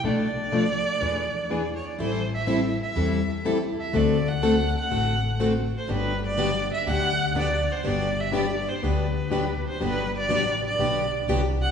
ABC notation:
X:1
M:4/4
L:1/16
Q:"Swing" 1/4=123
K:G
V:1 name="Violin"
d12- d3/2 ^c/2 d2 | c2 e4 e6 z2 e2 | d2 f4 f6 z2 c2 | B2 d4 e2 f4 d2 c2 |
d2 e2 d2 c2 B6 c2 | B2 d4 d6 z2 f2 |]
V:2 name="Steel-string acoustic guitar"
[B,,=F,A,DA]2 z2 [B,,F,A,DA]2 z2 [E,B,D^G]2 z2 [E,B,DG]2 z2 | [E,G,CEA]2 z2 [E,G,CEA]2 z2 [E,G,CEA]2 z2 [E,G,CEA]2 z2 | [D,A,CFA]2 z2 [D,A,CFA]2 z2 [D,A,CFA]2 z2 [D,A,CFA]2 z2 | [D,F,B,DG]2 z2 [D,F,B,DG]2 z2 [D,F,B,DG]2 z2 [D,F,B,DG]2 z2 |
[D,F,B,DG]2 z2 [D,F,B,DG]2 z2 [D,F,B,DG]2 z2 [D,F,B,DG]2 z2 | [D,F,B,DG]2 z2 [D,F,B,DG]2 z2 [D,F,B,DG]2 z2 [D,F,B,DG]2 z2 |]
V:3 name="Steel-string acoustic guitar"
z16 | [E,G,CEA]2 z2 [E,G,CEA]2 z2 [E,G,CEA]2 z2 [E,G,CEA]2 z2 | [D,A,CFA]2 z2 [D,A,CFA]2 z2 [D,A,CFA]2 z2 [D,A,CFA]2 z2 | [D,F,B,DG]2 z2 [D,F,B,DG]2 z2 [D,F,B,DG]2 z2 [D,F,B,DG]2 z2 |
[D,F,B,DG]2 z2 [D,F,B,DG]2 z2 [D,F,B,DG]2 z2 [D,F,B,DG]2 z2 | [D,F,B,DG]2 z2 [D,F,B,DG]2 z2 [D,F,B,DG]2 z2 [D,F,B,DG]2 z2 |]
V:4 name="Upright bass" clef=bass
B,,,8 E,,8 | A,,,8 E,,8 | D,,8 A,,,8 | G,,,8 D,,8 |
G,,,8 D,,8 | G,,,4 A,,,4 B,,,4 C,,4 |]